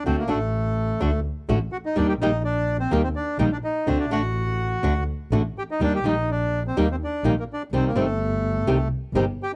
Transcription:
X:1
M:4/4
L:1/16
Q:1/4=126
K:Dphr
V:1 name="Bandoneon"
C B, A,8 z4 ^F E | D G E2 D3 C B, C D2 E D E2 | C D ^F8 z4 G E | D G E2 D3 C B, C D2 B, B, D2 |
C B, A,8 z4 G z |]
V:2 name="Nylon-string guitar"
[D,A,D^F]2 [D,A,DF]2 z4 [D,A,DF]2 z2 [D,A,DF]2 z2 | [E,G,B,EG]2 [E,G,B,EG]2 z4 [E,G,B,EG]2 z2 [E,G,B,EG]2 z2 | [D,A,D^F]2 [D,A,DF]2 z4 [D,A,DF]2 z2 [D,A,DF]2 z2 | [E,G,B,EG]2 [E,G,B,EG]2 z4 [E,G,B,EG]2 z2 [E,G,B,EG]2 z2 |
[C,E,G,CG]2 [C,E,G,CG]2 z4 [C,E,G,CG]2 z2 [C,E,G,CG]2 z2 |]
V:3 name="Double bass" clef=bass
D,,2 A,,,6 D,,2 z2 A,,,2 z2 | E,,2 B,,,6 E,,2 z2 B,,,2 z2 | D,,2 A,,,6 D,,2 z2 A,,,2 z2 | E,,2 B,,,6 E,,2 z2 B,,,2 z2 |
C,,2 G,,,6 C,,2 z2 G,,,2 z2 |]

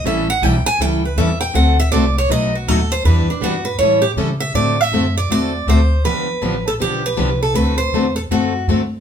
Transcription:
X:1
M:4/4
L:1/16
Q:"Swing" 1/4=160
K:Dmix
V:1 name="Steel-string acoustic guitar"
e2 f2 g2 ^g2 =g2 B2 e2 g2 | f2 e2 d2 ^c2 ^d2 F2 A2 =c2 | B2 D2 F2 B2 ^c2 G2 z2 e2 | d2 e4 d2 d4 c4 |
B6 A2 G2 B4 A2 | B2 c4 A2 F4 z4 |]
V:2 name="Steel-string acoustic guitar"
[E,G,^CEA]2 z2 [E,G,CEA] z3 [E,G,CEA]2 z2 [E,G,CEA] z3 | [D,A,CFA]2 z2 [D,A,CFA] z3 [B,,F,A,^DF]2 z2 [B,,F,A,DF] z3 | [E,B,DG]2 z2 [E,B,DG] z3 [E,G,^CEA]2 z2 [E,G,CEA] z3 | [D,A,CFA]2 z2 [D,A,CFA] z3 [D,A,CFA]2 z2 [D,A,CFA] z3 |
[D,=F,B,DG]2 z2 [D,F,B,DG] z3 [D,F,B,DG]2 z2 [D,F,B,DG] z3 | [D,A,CFA]2 z2 [D,A,CFA] z3 [D,A,CFA]2 z2 [D,A,CFA] z3 |]
V:3 name="Steel-string acoustic guitar"
[E,G,^CEA]2 z2 [E,G,CEA] z3 [E,G,CEA]2 z2 [E,G,CEA] z3 | [D,A,CFA]2 z2 [D,A,CFA] z3 [B,,F,A,^DFB]2 z2 [B,,F,A,DFB] z3 | [E,G,DEB]2 z2 [E,G,DEB] z3 [E,G,^CEA]2 z2 [E,G,CEA] z3 | [D,A,CFA]2 z2 [D,A,CFA] z3 [D,A,CFA]2 z2 [D,A,CFA] z3 |
[D,=F,B,DG]2 z2 [D,F,B,DG] z3 [D,F,B,DG]2 z2 [D,F,B,DG] z3 | [D,A,CFA]2 z2 [D,A,CFA] z3 [D,A,CFA]2 z2 [D,A,CFA] z3 |]
V:4 name="Upright bass" clef=bass
A,,,4 B,,,2 z2 ^C,,4 E,,4 | D,,4 C,,4 B,,,4 ^D,,4 | E,,2 z2 G,,4 A,,4 ^C,4 | A,,4 F,,4 E,,4 D,,4 |
G,,,4 A,,,4 B,,,4 C,,4 | D,,4 E,,4 F,,4 G,,4 |]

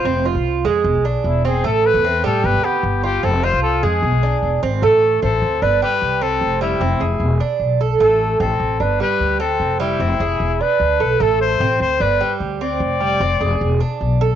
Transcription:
X:1
M:4/4
L:1/16
Q:1/4=151
K:Am
V:1 name="Trumpet"
c2 z8 z2 E2 ^G2 | A2 B4 A2 B2 G4 G2 | A2 c2 A2 ^G8 z2 | A4 A4 B2 B4 A2- |
A2 E8 z6 | A4 A4 B2 B4 A2- | A2 E8 B6 | A2 c4 c2 B4 z2 d2- |
d8- d2 z6 |]
V:2 name="Cuban tres"
C2 F4 ^G,4 D4 C2 | A,4 C2 G,4 B,4 F2 | C2 F4 ^G,4 D4 C2 | A,4 C4 D2 G,4 C2- |
C2 G,2 C2 ^G4 D4 A2 | A,4 C4 D2 G,4 C2- | C2 G,2 C2 ^G4 D4 A2 | A,4 C4 D2 G,4 C2- |
C2 G,2 C2 ^G4 D4 A2 |]
V:3 name="Upright bass" clef=bass
F,,,3 C,,3 F,,2 E,,, B,,,2 z E,,,4 | A,,,3 E,,3 A,,2 G,,, D,,2 z G,,,4 | F,,,3 C,,3 F,,2 E,,, B,,,2 z E,,,2 ^G,,,2 | A,,,4 A,,,2 D,,2 G,,,2 z2 C,,4 |
F,,,4 F,,,2 F,,,2 E,,,2 z2 B,,,4 | A,,,4 A,,,2 A,,,2 G,,,2 z2 D,,4 | F,,,4 F,,,2 F,,,2 E,,,2 z2 D,,2 B,,,2 | A,,,4 A,,,2 D,,2 G,,,2 z2 D,,4 |
F,,,4 F,,,2 F,,,2 E,,,2 z2 B,,,4 |]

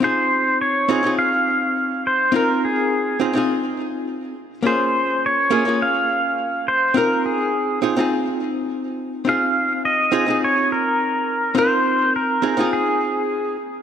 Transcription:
X:1
M:4/4
L:1/16
Q:"Swing 16ths" 1/4=104
K:Bbm
V:1 name="Pedal steel guitar"
c4 d4 f6 c2 | B2 A4 z8 z2 | c4 d4 f6 c2 | B2 A4 z8 z2 |
f4 e4 d2 B6 | c4 B4 A6 z2 |]
V:2 name="Hollow-body jazz guitar"
[CEFA]6 [CEFA] [CEFA]8- [CEFA] | [CEFB]6 [CEFA] [CEFA]6- [CEFA] z2 | [B,DFA]6 [B,DFA] [B,DFA]8- [B,DFA] | [CEFB]6 [CEFA] [CEFA]8- [CEFA] |
[CEFA]6 [CEFA] [CEFA]8- [CEFA] | [CEFB]6 [CEFA] [CEFA]6- [CEFA] z2 |]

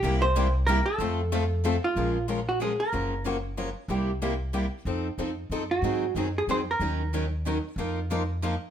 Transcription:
X:1
M:3/4
L:1/8
Q:"Swing" 1/4=186
K:Bbm
V:1 name="Hollow-body jazz guitar"
=G c2 z B =A- | =A4- A F- | F2 z G A B- | B2 z4 |
z6 | z4 z G- | G2 z A c B- | B2 z4 |
z6 |]
V:2 name="Steel-string acoustic guitar"
[C,=G,B,=E=G] z [C,G,B,EG] z [C,G,B,EG] z | [F,=A,CF=A] z [F,A,CFA] z [F,A,CFA] z | [F,A,DFB] z [F,A,DFB] z [F,A,DFB] z | [G,DFB] z [G,DFB] z [G,DFB] z |
[C,=G,B,=E=G] z [C,G,B,EG] z [C,G,B,EG] z | [F,CE=A] z [F,CEA] z [F,CEA] z | [E,G,CEA] z [E,G,CEA] z [E,G,CEA] z | [E,G,DEB] z [E,G,DEB] z [E,G,DEB] z |
[F,B,EFB] z [F,B,EFB] z [F,B,EFB] z |]
V:3 name="Steel-string acoustic guitar"
[C,=G,B,=E=G] z [C,G,B,EG] z [C,G,B,EG] z | [F,=A,CF=A] z [F,A,CFA] z [F,A,CFA] z | [F,A,DFB] z [F,A,DFB] z [F,A,DFB] z | [D,F,B,DG] z [D,F,B,DG] z [D,F,B,DG] z |
[C,=G,B,=E=G] z [C,G,B,EG] z [C,G,B,EG] z | [F,CE=A] z [F,CEA] z [F,CEA] z | [E,G,CEA] z [E,G,CEA] z [E,G,CEA] z | [E,G,DEB] z [E,G,DEB] z [E,G,DEB] z |
[F,B,EFB] z [F,B,EFB] z [F,B,EFB] z |]
V:4 name="Upright bass" clef=bass
C,,6 | F,,6 | B,,,6 | G,,,6 |
C,,6 | F,,2 F,,2 G,,2 | A,,2 G,,2 F,,2 | E,,6 |
F,,6 |]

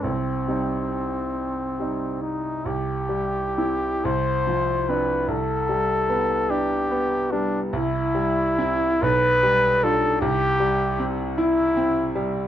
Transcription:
X:1
M:6/8
L:1/8
Q:3/8=49
K:Cm
V:1 name="Trumpet"
C4- C E | [K:C] G3 c2 B | A3 G2 D | E3 B2 A |
G2 z E2 z |]
V:2 name="Grand piano"
C,, [G,CE]3 [G,CE]2 | [K:C] C,, G, [CE] C,, F, [CD] | C,, G, B, D B, G, | C,, G, [CE] B,,, G, [DF] |
C,, G, C E C G, |]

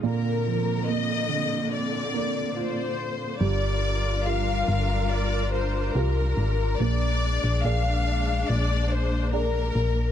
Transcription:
X:1
M:4/4
L:1/16
Q:1/4=71
K:Gphr
V:1 name="Violin section"
B4 e4 d4 c4 | d4 f4 d2 c2 B4 | d4 f4 d2 c2 B4 |]
V:2 name="Grand piano"
B,,2 F,2 B,2 D,4 B,2 F4 | G,4 [FGB]4 z4 [FGB]4 | B,4 [ABd]4 z4 [ABd]4 |]
V:3 name="String section"
[B,,D,B,C]16 | [G,DFB]16 | [A,B,D]16 |]
V:4 name="FM bass" clef=bass
z16 | G,,,6 G,,,6 C,,2 A,,,2 | B,,,3 B,,, B,,,4 B,,,6 B,,,2 |]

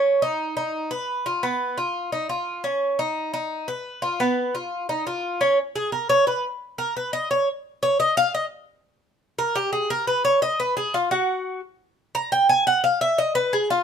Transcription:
X:1
M:4/4
L:1/8
Q:1/4=174
K:Dbmix
V:1 name="Cuban tres"
D E2 E2 =B2 F | C2 F2 E F2 D- | D E2 E2 =B2 F | C2 F2 E F2 D |
z A B d c z2 B | c e d z2 d e f | e z4 z B =G | A B c d e c A F |
G3 z3 b =g | a g f _f e c A =F |]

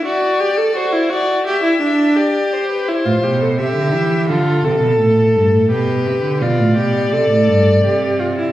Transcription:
X:1
M:4/4
L:1/16
Q:1/4=85
K:C
V:1 name="Violin"
d4 c2 d2 e4 d2 c B | c4 e4 A8 | B4 d12 |]
V:2 name="Viola"
^F2 G A F E F2 G E D2 G4 | E F G A G4 F2 A6 | G4 F2 G2 A4 G2 F E |]
V:3 name="Cello" clef=bass
z16 | z A,, B,,2 C, D, E,2 D,2 C, B,, A,,2 G,, A,, | B,,2 C, D, B,, A,, B,,2 C, A,, G,,2 C,4 |]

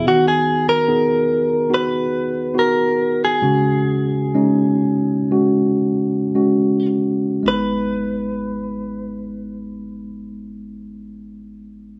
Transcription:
X:1
M:4/4
L:1/16
Q:1/4=60
K:G#m
V:1 name="Clean electric guitar"
F G2 A4- A B4 A3 G- | G12- G2 z2 | B16 |]
V:2 name="Tine electric piano"
[B,DF]4 [B,DG]4 [B,DF]4 [B,DF]4 | [G,CF]4 [G,CD]4 [G,CF]4 [G,CF]4 | [G,B,D]16 |]
V:3 name="Tine electric piano" clef=bass
D,6 z8 z2 | C,6 z8 z2 | G,,,16 |]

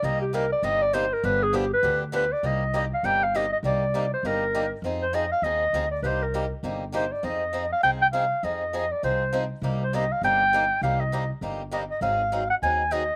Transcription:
X:1
M:4/4
L:1/16
Q:"Swing" 1/4=200
K:Cm
V:1 name="Clarinet"
e2 G2 B2 d2 e2 d2 c2 B2 | =B2 A2 G2 B4 z2 B2 d2 | e4 e2 f2 g2 f2 e2 e2 | d6 c2 B6 z2 |
z2 c2 e2 f2 e6 d3/2 =B/2 | c2 B4 z6 c2 d2 | e6 f2 g2 g2 f4 | e6 d2 c6 z2 |
z2 c2 e2 f2 g8 | f2 e4 z6 e2 e2 | f6 _g2 a4 e4 |]
V:2 name="Steel-string acoustic guitar"
[C,G,B,EG]2 z2 [C,G,B,EG]2 z2 [C,G,B,EG]2 z2 [C,G,B,EG]2 z2 | [D,F,=B,DG]2 z2 [D,F,B,DG]2 z2 [D,F,B,DG]2 z2 [D,F,B,DG]2 z2 | [C,G,B,EG]2 z2 [C,G,B,EG]2 z2 [C,G,B,EG]2 z2 [C,G,B,EG]2 z2 | [C,G,B,EG]2 z2 [C,G,B,EG]2 z2 [C,G,B,EG]2 z2 [C,G,B,EG]2 z2 |
[F,CEA]2 z2 [F,CEA]2 z2 [F,CEA]2 z2 [F,CEA]2 z2 | [C,G,B,EG]2 z2 [C,G,B,EG]2 z2 [C,G,B,EG]2 z2 [C,G,B,EG]2 z2 | [F,CEA]2 z2 [F,CEA]2 z2 [F,CEA]2 z2 [F,CEA]2 z2 | [F,CEA]2 z2 [F,CEA]2 z2 [F,CEA]2 z2 [F,CEA]2 z2 |
[C,G,B,EG]2 z2 [C,G,B,EG]2 z2 [C,G,B,EG]2 z2 [C,G,B,EG]2 z2 | [C,G,B,EG]2 z2 [C,G,B,EG]2 z2 [C,G,B,EG]2 z2 [C,G,B,EG]2 z2 | [E,_G,CEA]2 z2 [E,G,CEA]2 z2 [E,G,CEA]2 z2 [E,G,CEA]2 z2 |]
V:3 name="Upright bass" clef=bass
C,,8 G,,,8 | G,,,8 D,,8 | C,,8 G,,,8 | C,,8 G,,,8 |
F,,8 E,,4 D,,4 | C,,8 G,,,8 | F,,8 C,,8 | F,,8 C,,8 |
C,,8 G,,,8 | C,,8 G,,,8 | A,,,8 E,,8 |]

